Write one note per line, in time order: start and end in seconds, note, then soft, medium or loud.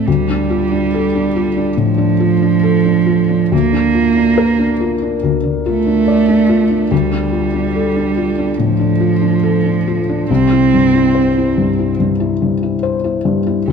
0.07 1.75 D2 medium
0.07 1.80 G3 medium
0.30 0.64 D4 medium
0.50 0.85 F4 medium
0.72 1.06 D4 medium
0.94 1.27 A4 medium
1.15 1.49 D4 medium
1.36 1.70 F4 medium
1.57 1.91 D4 medium
1.77 2.12 A2 soft
1.77 3.54 F3 loud
1.98 2.33 D4 medium
2.20 2.55 F4 medium
2.42 2.77 D4 medium
2.63 2.99 A4 medium
2.85 3.21 D4 medium
3.06 3.43 F4 medium
3.29 3.52 D4 medium
3.52 5.20 D2 medium
3.52 5.25 A#3 loud
3.73 4.08 D4 medium
3.94 4.30 F4 medium
4.16 4.51 D4 medium
4.38 4.73 A#4 medium
4.59 4.94 D4 medium
4.80 5.15 F4 medium
5.02 5.36 D4 medium
5.23 6.87 D2 medium
5.44 5.78 D3 medium
5.66 6.93 A3 loud
5.66 6.00 F4 medium
5.86 6.20 D4 medium
6.08 6.41 D5 medium
6.28 6.62 D4 medium
6.49 6.83 F4 medium
6.70 6.91 D4 medium
6.91 8.54 D2 medium
6.91 8.61 G3 medium
7.12 7.45 D4 soft
7.32 7.66 F4 soft
7.53 7.87 D4 medium
7.75 8.08 A4 medium
7.96 8.29 D4 medium
8.17 8.50 F4 medium
8.38 8.71 D4 medium
8.59 8.92 A2 soft
8.59 10.29 F3 medium
8.80 9.13 D4 medium
9.00 9.34 F4 medium
9.22 9.55 D4 medium
9.43 9.77 A4 medium
9.65 9.99 D4 soft
9.88 10.22 F4 medium
10.09 10.30 D4 medium
10.30 11.95 C2 medium
10.30 11.96 C4 loud
10.52 10.86 E4 soft
10.74 11.07 G2 soft
10.95 11.28 E4 medium
11.15 11.48 C5 medium
11.37 11.70 E4 soft
11.58 11.91 G2 medium
11.79 12.12 E4 soft
12.00 12.33 G2 soft
12.20 12.54 E4 soft
12.42 12.75 G2 soft
12.63 12.96 E4 medium
12.83 13.17 C5 medium
13.04 13.38 E4 soft
13.25 13.59 G2 medium
13.47 13.67 E4 soft
13.67 13.72 D2 medium
13.67 13.72 A3 loud